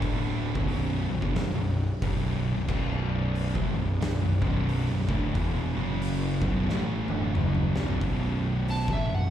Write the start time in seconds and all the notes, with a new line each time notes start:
Already playing: D1 D2 A2 D3
0.02 kick, open hi-hat
0.55 B0 B1 F#2 B2, kick
0.68 open hi-hat
1.09 B0 B1 F#2
1.22 E1 E2 B2, kick
1.35 B0 B1 F#2, snare, open hi-hat
1.56 B0 B1 F#2
2.02 B0 B1 F#2 B2, kick, open hi-hat
2.56 B0 B1 F#2
2.68 B0 B1 F#2 B2, kick, crash
3.35 open hi-hat
3.55 A1 A2 E3, kick
3.75 B0 B1 F#2
4.01 B0 B1 F#2, snare, open hi-hat
4.22 B0 B1 F#2
4.42 B0 B1 F#2 B2, kick
4.69 open hi-hat
4.88 B0 B1 F#2
5.08 D1 D2 A2 D3, kick
5.35 E1 E2 B2 E3, kick, open hi-hat
5.75 F#1 F#2 C#3 F#3
6.02 open hi-hat
6.41 B0 B1 F#2 B2, kick
6.69 A1 A2 E3 A3, snare
7.08 D1 D2 A2 D3, mid tom
7.35 F#1 F#2 C#3 F#3, mid tom
7.55 mid tom
7.75 B0 B1 F#2 B2, snare
7.88 floor tom
8.01 B0 B1 F#2 B2, kick, open hi-hat
8.68 A5, open hi-hat
8.88 A1 A2 E3, kick
8.93 E5
9.09 B0 B1 F#2
9.15 F#5